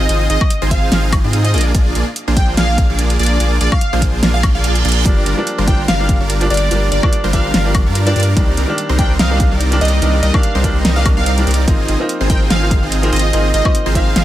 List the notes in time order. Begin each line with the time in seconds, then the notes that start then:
Already playing: D#5
0.09 G#1 C4 D#4 F4 G#4 D#5, closed hi-hat
0.30 G#1 C4 D#4 F4 G#4 D#5, closed hi-hat
0.41 kick, high woodblock
0.50 closed hi-hat
0.62 G#1 C4 D#4 F4 G#4 C5
0.71 F5, kick, closed hi-hat
0.92 G#1 C4 D#4 F4 G#4 F5, snare, closed hi-hat
1.12 kick, closed hi-hat, high woodblock
1.24 G#2 C4 D#4 F4 G#4 D#5
1.33 closed hi-hat
1.45 D#5, closed hi-hat
1.54 A#1 A#3 D4 F4 G#4 D5 D#5, closed hi-hat
1.58 closed hi-hat
1.61 closed hi-hat
1.75 A#1 A#3 D4 F4 G#4 D5, kick, closed hi-hat
1.95 A#1 A#3 D4 F4 G#4 D5, closed hi-hat
2.16 closed hi-hat
2.28 A#1 A#3 D4 F4 G#4 C5
2.37 G5, kick, closed hi-hat
2.57 A#1 A#3 D4 F4 G#4 F5, snare, closed hi-hat
2.78 kick, closed hi-hat
2.90 A#1 A#3 D4 F4 G#4 D5
2.99 closed hi-hat
3.10 closed hi-hat
3.19 A#1 A#3 D4 F4 G#4 D5, closed hi-hat
3.23 closed hi-hat
3.26 closed hi-hat
3.40 A#1 A#3 D4 F4 G#4 D5, closed hi-hat
3.61 A#1 A#3 D4 F4 G#4 D5, closed hi-hat
3.72 F5, kick, high woodblock
3.81 closed hi-hat
3.93 A#1 A#3 D4 F4 G#4 C5
4.02 kick, closed hi-hat
4.23 A#1 A#3 D4 F4 G#4 F5, snare, closed hi-hat, reverse cymbal
4.34 F5
4.43 kick, closed hi-hat, high woodblock
4.55 A#1 A#3 D4 F4 G#4 D5 F5
4.64 F5, closed hi-hat
4.75 closed hi-hat
4.85 A#1 A#3 D4 F4 G#4 D5, closed hi-hat
4.89 closed hi-hat
4.92 closed hi-hat
5.04 G1 F3 G3 A#3 D4 F4 A#4 D5, kick, closed hi-hat
5.26 G1 G3 D4 F4 A#4 D5, closed hi-hat
5.37 F3 G3 A#3 D4
5.47 closed hi-hat
5.58 G1 G3 D4 F4 A#4 C5
5.67 F3 G3 A#3 D4 G5, kick, closed hi-hat
5.88 G1 G3 D4 F4 A#4 F5, snare, closed hi-hat
5.99 F3 G3 A#3 D4
6.09 kick, closed hi-hat
6.20 G1 G3 D4 F4 A#4 D5
6.30 closed hi-hat
6.40 F3 G3 A#3 D4, closed hi-hat
6.50 G1 G3 D4 F4 A#4 D5, closed hi-hat
6.54 closed hi-hat
6.57 closed hi-hat
6.70 G1 F3 G3 A#3 D4 F4 A#4 D5, closed hi-hat
6.92 G1 G3 D4 F4 A#4 D5, closed hi-hat
7.02 F3 G3 A#3 D4, kick, high woodblock
7.13 closed hi-hat
7.24 G1 G3 D4 F4 A#4 C5
7.32 F3 G3 A#3 D4 F5, kick, closed hi-hat
7.54 G1 G3 D4 F4 A#4 F5, snare, closed hi-hat
7.64 F3 G3 A#3 D4
7.75 kick, closed hi-hat, high woodblock
7.86 G2 G3 D4 F4 A#4 D5
7.95 closed hi-hat
8.05 F3 G3 A#3 D4 D5, closed hi-hat
8.16 G2 G3 D4 F4 A#4 D5, closed hi-hat
8.20 closed hi-hat
8.23 closed hi-hat
8.36 C2 D#3 G3 A#3 C4 D4 D#4 A#4 D5, kick, closed hi-hat
8.57 C2 G3 C4 D#4 A#4 D5, closed hi-hat
8.68 D#3 G3 A#3 D4
8.78 closed hi-hat
8.89 C2 G3 C4 D#4 A#4 C5
8.98 D#3 G3 A#3 D4 G5, kick, closed hi-hat
9.19 C2 G3 C4 D#4 A#4 D#5 F5, snare, closed hi-hat
9.30 D#3 G3 A#3 D4
9.40 kick, closed hi-hat
9.51 C2 G3 C4 D#4 A#4 D5
9.61 closed hi-hat
9.71 D#3 G3 A#3 D4, closed hi-hat
9.81 C2 G3 C4 D#4 A#4 D5 D#5, closed hi-hat
9.85 closed hi-hat
9.88 closed hi-hat
10.01 C2 D#3 G3 A#3 C4 D4 D#4 A#4 D5, closed hi-hat
10.23 C2 G3 C4 D#4 A#4 D5 D#5, closed hi-hat
10.33 D#3 G3 A#3 D4 F5, kick, high woodblock
10.43 closed hi-hat
10.55 C2 G3 C4 D#4 A#4 C5
10.63 D#3 G3 A#3 D4, kick, closed hi-hat
10.85 C2 G3 C4 D#4 A#4 D#5, snare, closed hi-hat
10.95 D#3 G3 A#3 D4 F5
11.05 D#3 G3 A#3 D4, kick, closed hi-hat, high woodblock
11.17 C2 G3 C4 D#4 A#4 D5 F5
11.26 F5, closed hi-hat
11.37 D#3 G3 A#3 D4, closed hi-hat
11.47 C2 G3 C4 D#4 A#4 D5, closed hi-hat
11.51 closed hi-hat
11.54 closed hi-hat
11.67 G#1 F3 A#3 C4 D#4 F4 G#4 D#5, kick, closed hi-hat
11.88 G#1 C4 D#4 F4 G#4 D#5, closed hi-hat
11.99 F3 A#3 C4 D#4
12.09 closed hi-hat
12.20 G#1 C4 D#4 F4 G#4 C5
12.29 F3 A#3 C4 D#4 G5, kick, closed hi-hat
12.50 G#1 C4 D#4 F4 G#4 F5, snare, closed hi-hat
12.61 F3 A#3 C4 D#4
12.71 kick, closed hi-hat
12.82 G#1 C4 D#4 F4 G#4 D#5
12.92 closed hi-hat
13.02 F3 A#3 C4 D#4, closed hi-hat
13.12 G#1 C4 D#4 F4 G#4 D#5, closed hi-hat
13.16 closed hi-hat
13.19 closed hi-hat
13.32 G#1 F3 A#3 C4 D#4 F4 G#4 D#5, closed hi-hat
13.54 G#1 C4 D#4 F4 G#4 D#5, closed hi-hat
13.64 F3 A#3 C4 D#4, kick, high woodblock
13.75 closed hi-hat
13.86 G#1 C4 D#4 F4 G#4 C5
13.94 F3 A#3 C4 D#4 F5, kick, closed hi-hat
14.16 G#1 C4 D#4 F4 G#4 F5, snare, closed hi-hat